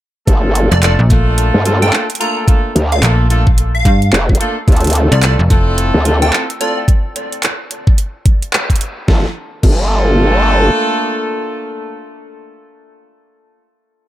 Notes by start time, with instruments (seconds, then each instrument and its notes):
0.27 wobble bass G1, horn section A3 A#3 D4 F4 A4, kick, closed hi-hat
0.55 closed hi-hat
0.71 fm bass F1, digital synth lead D5, closed hi-hat
0.82 horn section A3 A#3 D4 F4 A4, digital synth lead D5, clap, closed hi-hat
0.99 fm bass A#1
1.10 horn section A3 A#3 D4 F4 A4, kick, snare, closed hi-hat
1.38 closed hi-hat
1.54 wobble bass G2
1.65 horn section A3 A#3 D4 F4 A4, closed hi-hat
1.82 horn section A3 A#3 D4 F4 A4, digital synth lead G5, closed hi-hat
1.93 clap, snare
2.10 closed hi-hat
2.15 closed hi-hat
2.20 horn section A3 A#3 D4 F4 A4, digital synth lead A#5, closed hi-hat
2.48 horn section A3 A#3 D4 F4 A4, kick, closed hi-hat
2.75 wobble bass D2, closed hi-hat
2.92 digital synth lead F5, closed hi-hat
3.03 fm bass A#1, horn section A3 A#3 D4 F4 A4, clap, closed hi-hat
3.30 horn section A3 A#3 D4 F4 A4, closed hi-hat
3.47 kick
3.58 closed hi-hat
3.75 digital synth lead F5
3.85 fm bass G2, kick, closed hi-hat
4.02 closed hi-hat
4.13 wobble bass F1, clap
4.29 kick
4.35 closed hi-hat
4.40 horn section A3 A#3 D4 F4 A4, closed hi-hat
4.68 wobble bass D2, horn section A3 C4 E4 F4 A4, kick, closed hi-hat
4.72 closed hi-hat
4.76 closed hi-hat
4.80 closed hi-hat
4.84 closed hi-hat
4.87 closed hi-hat
4.90 closed hi-hat
4.93 closed hi-hat
4.95 closed hi-hat
5.12 fm bass C2, digital synth lead D5, closed hi-hat
5.22 horn section A3 C4 E4 F4 A4, digital synth lead D5, clap, closed hi-hat
5.39 fm bass F1
5.50 horn section A3 C4 E4 F4 A4, kick, snare, closed hi-hat
5.78 closed hi-hat
5.94 wobble bass D2
6.05 horn section A3 C4 E4 F4 A4, closed hi-hat
6.22 horn section A3 C4 E4 F4 A4, digital synth lead G5, closed hi-hat
6.33 clap, snare
6.50 closed hi-hat
6.60 horn section A3 C4 E4 F4 A4, digital synth lead D5, closed hi-hat
6.88 kick, closed hi-hat
7.16 closed hi-hat
7.32 closed hi-hat
7.43 clap, closed hi-hat
7.71 closed hi-hat
7.87 kick
7.98 closed hi-hat
8.26 kick, closed hi-hat
8.42 closed hi-hat
8.53 clap
8.70 kick, closed hi-hat
8.76 closed hi-hat
8.81 closed hi-hat
9.08 wobble bass G1, horn section A3 A#3 D4 F4 A4, kick, snare
9.63 wobble bass G1, horn section A3 A#3 D4 F4 A4, kick, crash